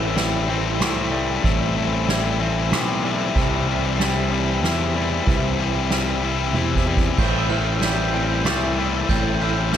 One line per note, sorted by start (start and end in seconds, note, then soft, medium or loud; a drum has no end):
0.00 0.81 A1 medium
0.00 0.16 A2 medium
0.00 1.12 A2 medium
0.00 0.16 E3 medium
0.00 0.79 E3 medium
0.00 0.17 A3 medium
0.00 0.17 C4 medium
0.00 0.17 E4 medium
0.00 3.31 E4 medium
0.00 3.32 A4 medium
0.00 9.77 C5 medium
0.00 1.40 G5 medium
0.16 0.47 A2 medium
0.16 0.49 E3 medium
0.16 1.11 G3 medium
0.16 0.48 A3 medium
0.16 0.49 C4 medium
0.16 0.50 E4 medium
0.16 snare medium
0.16 ride medium
0.48 0.79 A2 medium
0.48 0.80 E3 loud
0.48 0.81 A3 medium
0.48 0.81 C4 medium
0.48 0.82 E4 medium
0.80 1.38 C2 medium
0.80 1.11 A2 medium
0.80 1.12 E3 medium
0.80 1.11 A3 medium
0.80 1.13 C4 medium
0.80 1.13 E4 medium
0.80 snare medium
0.80 ride medium
1.11 1.42 A2 medium
1.11 1.43 E3 medium
1.11 2.08 G3 medium
1.11 1.43 A3 medium
1.11 1.44 C4 medium
1.11 1.44 E4 loud
1.43 2.72 A1 loud
1.43 1.75 A2 loud
1.43 1.76 E3 medium
1.43 1.75 A3 loud
1.43 1.77 C4 loud
1.43 1.78 E4 loud
1.43 3.34 A5 medium
1.43 kick loud
1.43 ride medium
1.76 2.07 A2 medium
1.76 2.08 E3 medium
1.76 2.08 A3 medium
1.76 2.09 C4 medium
1.76 2.10 E4 medium
2.08 2.38 A2 medium
2.08 2.40 E3 loud
2.08 3.03 G3 medium
2.08 2.39 A3 medium
2.08 2.41 C4 loud
2.08 2.41 E4 loud
2.08 snare medium
2.08 ride medium
2.39 2.70 A2 medium
2.39 2.72 E3 loud
2.39 2.71 A3 loud
2.39 2.72 C4 medium
2.39 2.73 E4 loud
2.71 3.29 B1 loud
2.71 3.03 A2 medium
2.71 3.04 E3 medium
2.71 3.04 A3 medium
2.71 3.05 C4 medium
2.71 3.05 E4 medium
2.71 snare medium
2.71 ride medium
3.04 3.34 A2 medium
3.04 3.36 E3 medium
3.04 3.98 G3 medium
3.04 3.35 A3 medium
3.04 3.37 C4 medium
3.04 3.37 E4 loud
3.36 4.63 C2 loud
3.36 3.67 C3 medium
3.36 3.68 E3 medium
3.36 3.68 G3 loud
3.36 3.68 C4 loud
3.36 9.77 E4 medium
3.36 3.69 E4 loud
3.36 7.15 B4 medium
3.36 9.77 G5 medium
3.36 kick loud
3.36 crash medium
3.67 3.99 C3 medium
3.67 3.99 E3 medium
3.67 4.00 G3 medium
3.67 4.00 C4 medium
3.67 4.01 E4 medium
3.67 ride medium
3.99 4.30 C3 medium
3.99 4.32 E3 loud
3.99 4.32 G3 medium
3.99 4.33 C4 loud
3.99 4.33 E4 medium
3.99 snare medium
3.99 ride medium
4.31 4.62 C3 medium
4.31 4.63 E3 medium
4.31 4.64 G3 medium
4.31 4.65 C4 loud
4.31 4.65 E4 loud
4.63 5.20 E2 loud
4.63 4.94 C3 medium
4.63 4.96 E3 medium
4.63 4.96 G3 medium
4.63 4.97 C4 loud
4.63 4.97 E4 loud
4.63 snare medium
4.63 ride medium
4.96 5.25 C3 medium
4.96 5.26 E3 medium
4.96 5.27 G3 medium
4.96 5.27 C4 medium
4.96 5.28 E4 loud
5.26 6.55 C2 loud
5.26 5.58 C3 medium
5.26 5.59 E3 loud
5.26 5.60 G3 medium
5.26 5.60 C4 medium
5.26 5.61 E4 loud
5.26 kick loud
5.26 ride medium
5.59 5.89 C3 medium
5.59 5.91 E3 medium
5.59 5.91 G3 medium
5.59 5.91 C4 medium
5.59 5.92 E4 medium
5.90 6.22 C3 medium
5.90 6.23 E3 medium
5.90 6.23 G3 medium
5.90 6.24 C4 medium
5.90 6.24 E4 medium
5.90 snare medium
5.90 ride medium
6.23 6.53 C3 medium
6.23 6.54 E3 medium
6.23 6.55 G3 medium
6.23 6.55 C4 medium
6.23 6.56 E4 loud
6.54 7.12 E2 medium
6.54 6.85 C3 medium
6.54 6.86 E3 medium
6.54 6.87 G3 medium
6.54 6.87 C4 medium
6.54 6.88 E4 medium
6.54 high tom medium
6.76 kick medium
6.86 7.17 C3 medium
6.86 7.19 E3 medium
6.86 7.19 G3 medium
6.86 7.20 C4 medium
6.86 7.20 E4 medium
6.97 kick loud
7.18 8.45 A1 medium
7.18 7.50 A2 medium
7.18 7.50 E3 loud
7.18 7.51 A3 loud
7.18 7.51 C4 loud
7.18 7.52 E4 loud
7.18 9.77 A4 medium
7.18 7.50 G6 medium
7.18 kick loud
7.18 crash loud
7.18 splash medium
7.50 7.81 A2 medium
7.50 7.82 E3 medium
7.50 7.82 A3 medium
7.50 7.82 C4 medium
7.50 7.83 E4 medium
7.50 7.82 F6 medium
7.50 ride medium
7.81 8.12 A2 medium
7.81 8.14 E3 medium
7.81 8.77 G3 medium
7.81 8.13 A3 medium
7.81 8.14 C4 medium
7.81 8.15 E4 medium
7.81 8.46 G6 medium
7.81 snare medium
7.81 ride medium
8.13 8.45 A2 medium
8.13 8.46 E3 medium
8.13 8.46 A3 medium
8.13 8.47 C4 medium
8.13 8.48 E4 medium
8.45 9.03 C2 medium
8.45 8.77 A2 medium
8.45 8.78 E3 medium
8.45 8.78 A3 medium
8.45 8.78 C4 loud
8.45 8.79 E4 medium
8.45 9.09 A6 medium
8.45 snare medium
8.45 ride medium
8.78 9.08 A2 medium
8.78 9.09 E3 medium
8.78 9.72 G3 medium
8.78 9.09 A3 medium
8.78 9.09 C4 loud
8.78 9.11 E4 medium
9.08 9.77 A1 loud
9.08 9.40 A2 medium
9.08 9.42 E3 medium
9.08 9.42 A3 medium
9.08 9.41 C4 medium
9.08 9.43 E4 loud
9.08 9.42 G6 medium
9.08 kick loud
9.08 ride medium
9.41 9.71 A2 medium
9.41 9.73 E3 medium
9.41 9.72 A3 medium
9.41 9.72 C4 medium
9.41 9.74 E4 medium
9.41 9.74 F6 medium
9.72 9.77 A2 medium
9.72 9.77 E3 medium
9.72 9.77 G3 medium
9.72 9.77 A3 medium
9.72 9.77 C4 medium
9.72 9.77 G6 medium
9.72 snare medium
9.72 ride medium